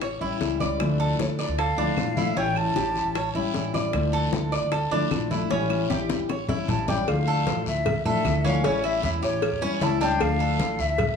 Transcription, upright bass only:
0, 0, Header, 1, 2, 480
1, 0, Start_track
1, 0, Key_signature, -1, "minor"
1, 0, Tempo, 391901
1, 979, Time_signature, 4, 2, 24, 8
1, 13672, End_track
2, 0, Start_track
2, 0, Title_t, "Upright bass"
2, 0, Program_c, 0, 32
2, 0, Note_on_c, 0, 33, 76
2, 236, Note_off_c, 0, 33, 0
2, 254, Note_on_c, 0, 33, 85
2, 370, Note_off_c, 0, 33, 0
2, 495, Note_on_c, 0, 37, 91
2, 953, Note_off_c, 0, 37, 0
2, 978, Note_on_c, 0, 38, 101
2, 1435, Note_off_c, 0, 38, 0
2, 1455, Note_on_c, 0, 38, 82
2, 1799, Note_off_c, 0, 38, 0
2, 1817, Note_on_c, 0, 38, 82
2, 2161, Note_off_c, 0, 38, 0
2, 2174, Note_on_c, 0, 38, 80
2, 2291, Note_off_c, 0, 38, 0
2, 2415, Note_on_c, 0, 34, 85
2, 2875, Note_off_c, 0, 34, 0
2, 2897, Note_on_c, 0, 33, 106
2, 3356, Note_off_c, 0, 33, 0
2, 3380, Note_on_c, 0, 33, 97
2, 3723, Note_off_c, 0, 33, 0
2, 3736, Note_on_c, 0, 33, 73
2, 4082, Note_off_c, 0, 33, 0
2, 4098, Note_on_c, 0, 33, 85
2, 4215, Note_off_c, 0, 33, 0
2, 4338, Note_on_c, 0, 33, 101
2, 4797, Note_off_c, 0, 33, 0
2, 4821, Note_on_c, 0, 38, 99
2, 5278, Note_off_c, 0, 38, 0
2, 5303, Note_on_c, 0, 38, 90
2, 5645, Note_off_c, 0, 38, 0
2, 5659, Note_on_c, 0, 38, 74
2, 6003, Note_off_c, 0, 38, 0
2, 6018, Note_on_c, 0, 38, 80
2, 6135, Note_off_c, 0, 38, 0
2, 6260, Note_on_c, 0, 34, 94
2, 6718, Note_off_c, 0, 34, 0
2, 6742, Note_on_c, 0, 33, 108
2, 7199, Note_off_c, 0, 33, 0
2, 7223, Note_on_c, 0, 33, 94
2, 7566, Note_off_c, 0, 33, 0
2, 7578, Note_on_c, 0, 33, 82
2, 7923, Note_off_c, 0, 33, 0
2, 7943, Note_on_c, 0, 33, 90
2, 8058, Note_off_c, 0, 33, 0
2, 8181, Note_on_c, 0, 33, 103
2, 8638, Note_off_c, 0, 33, 0
2, 8662, Note_on_c, 0, 38, 94
2, 9118, Note_off_c, 0, 38, 0
2, 9144, Note_on_c, 0, 33, 94
2, 9371, Note_off_c, 0, 33, 0
2, 9384, Note_on_c, 0, 38, 83
2, 9725, Note_off_c, 0, 38, 0
2, 9746, Note_on_c, 0, 33, 84
2, 9972, Note_off_c, 0, 33, 0
2, 10102, Note_on_c, 0, 38, 105
2, 10557, Note_off_c, 0, 38, 0
2, 10583, Note_on_c, 0, 33, 98
2, 11037, Note_off_c, 0, 33, 0
2, 11059, Note_on_c, 0, 40, 86
2, 11287, Note_off_c, 0, 40, 0
2, 11298, Note_on_c, 0, 33, 96
2, 11640, Note_off_c, 0, 33, 0
2, 11656, Note_on_c, 0, 40, 75
2, 11884, Note_off_c, 0, 40, 0
2, 12018, Note_on_c, 0, 37, 101
2, 12473, Note_off_c, 0, 37, 0
2, 12497, Note_on_c, 0, 38, 105
2, 12951, Note_off_c, 0, 38, 0
2, 12972, Note_on_c, 0, 33, 92
2, 13201, Note_off_c, 0, 33, 0
2, 13216, Note_on_c, 0, 38, 90
2, 13556, Note_off_c, 0, 38, 0
2, 13574, Note_on_c, 0, 33, 92
2, 13672, Note_off_c, 0, 33, 0
2, 13672, End_track
0, 0, End_of_file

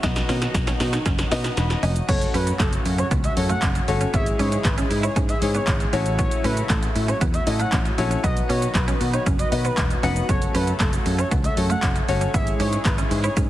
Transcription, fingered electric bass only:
0, 0, Header, 1, 2, 480
1, 0, Start_track
1, 0, Tempo, 512821
1, 31, Time_signature, 4, 2, 24, 8
1, 12632, End_track
2, 0, Start_track
2, 0, Title_t, "Fingered electric bass"
2, 0, Program_c, 0, 33
2, 30, Note_on_c, 0, 35, 111
2, 186, Note_off_c, 0, 35, 0
2, 271, Note_on_c, 0, 47, 105
2, 427, Note_off_c, 0, 47, 0
2, 509, Note_on_c, 0, 35, 108
2, 666, Note_off_c, 0, 35, 0
2, 751, Note_on_c, 0, 47, 101
2, 907, Note_off_c, 0, 47, 0
2, 990, Note_on_c, 0, 30, 95
2, 1146, Note_off_c, 0, 30, 0
2, 1231, Note_on_c, 0, 47, 102
2, 1387, Note_off_c, 0, 47, 0
2, 1472, Note_on_c, 0, 28, 90
2, 1628, Note_off_c, 0, 28, 0
2, 1711, Note_on_c, 0, 29, 97
2, 1867, Note_off_c, 0, 29, 0
2, 1952, Note_on_c, 0, 30, 107
2, 2108, Note_off_c, 0, 30, 0
2, 2192, Note_on_c, 0, 42, 95
2, 2348, Note_off_c, 0, 42, 0
2, 2431, Note_on_c, 0, 30, 108
2, 2587, Note_off_c, 0, 30, 0
2, 2673, Note_on_c, 0, 42, 93
2, 2828, Note_off_c, 0, 42, 0
2, 2912, Note_on_c, 0, 37, 94
2, 3068, Note_off_c, 0, 37, 0
2, 3153, Note_on_c, 0, 42, 109
2, 3308, Note_off_c, 0, 42, 0
2, 3391, Note_on_c, 0, 30, 95
2, 3547, Note_off_c, 0, 30, 0
2, 3633, Note_on_c, 0, 31, 91
2, 3788, Note_off_c, 0, 31, 0
2, 3872, Note_on_c, 0, 32, 115
2, 4028, Note_off_c, 0, 32, 0
2, 4112, Note_on_c, 0, 44, 110
2, 4268, Note_off_c, 0, 44, 0
2, 4350, Note_on_c, 0, 32, 98
2, 4506, Note_off_c, 0, 32, 0
2, 4592, Note_on_c, 0, 44, 100
2, 4748, Note_off_c, 0, 44, 0
2, 4832, Note_on_c, 0, 44, 109
2, 4987, Note_off_c, 0, 44, 0
2, 5071, Note_on_c, 0, 44, 104
2, 5227, Note_off_c, 0, 44, 0
2, 5310, Note_on_c, 0, 32, 99
2, 5467, Note_off_c, 0, 32, 0
2, 5550, Note_on_c, 0, 33, 104
2, 5863, Note_off_c, 0, 33, 0
2, 6030, Note_on_c, 0, 45, 98
2, 6186, Note_off_c, 0, 45, 0
2, 6269, Note_on_c, 0, 33, 107
2, 6426, Note_off_c, 0, 33, 0
2, 6509, Note_on_c, 0, 45, 101
2, 6666, Note_off_c, 0, 45, 0
2, 6751, Note_on_c, 0, 40, 103
2, 6907, Note_off_c, 0, 40, 0
2, 6990, Note_on_c, 0, 45, 99
2, 7146, Note_off_c, 0, 45, 0
2, 7230, Note_on_c, 0, 33, 97
2, 7386, Note_off_c, 0, 33, 0
2, 7472, Note_on_c, 0, 34, 98
2, 7627, Note_off_c, 0, 34, 0
2, 7711, Note_on_c, 0, 35, 111
2, 7867, Note_off_c, 0, 35, 0
2, 7951, Note_on_c, 0, 47, 102
2, 8107, Note_off_c, 0, 47, 0
2, 8190, Note_on_c, 0, 35, 109
2, 8346, Note_off_c, 0, 35, 0
2, 8430, Note_on_c, 0, 47, 102
2, 8586, Note_off_c, 0, 47, 0
2, 8671, Note_on_c, 0, 30, 94
2, 8827, Note_off_c, 0, 30, 0
2, 8910, Note_on_c, 0, 47, 99
2, 9066, Note_off_c, 0, 47, 0
2, 9150, Note_on_c, 0, 28, 85
2, 9306, Note_off_c, 0, 28, 0
2, 9390, Note_on_c, 0, 29, 99
2, 9547, Note_off_c, 0, 29, 0
2, 9631, Note_on_c, 0, 30, 108
2, 9787, Note_off_c, 0, 30, 0
2, 9871, Note_on_c, 0, 42, 95
2, 10027, Note_off_c, 0, 42, 0
2, 10110, Note_on_c, 0, 30, 104
2, 10266, Note_off_c, 0, 30, 0
2, 10351, Note_on_c, 0, 42, 95
2, 10507, Note_off_c, 0, 42, 0
2, 10591, Note_on_c, 0, 37, 95
2, 10747, Note_off_c, 0, 37, 0
2, 10832, Note_on_c, 0, 42, 112
2, 10988, Note_off_c, 0, 42, 0
2, 11070, Note_on_c, 0, 30, 96
2, 11227, Note_off_c, 0, 30, 0
2, 11312, Note_on_c, 0, 31, 94
2, 11468, Note_off_c, 0, 31, 0
2, 11551, Note_on_c, 0, 32, 113
2, 11707, Note_off_c, 0, 32, 0
2, 11791, Note_on_c, 0, 44, 103
2, 11947, Note_off_c, 0, 44, 0
2, 12030, Note_on_c, 0, 32, 96
2, 12187, Note_off_c, 0, 32, 0
2, 12271, Note_on_c, 0, 44, 100
2, 12427, Note_off_c, 0, 44, 0
2, 12512, Note_on_c, 0, 44, 108
2, 12632, Note_off_c, 0, 44, 0
2, 12632, End_track
0, 0, End_of_file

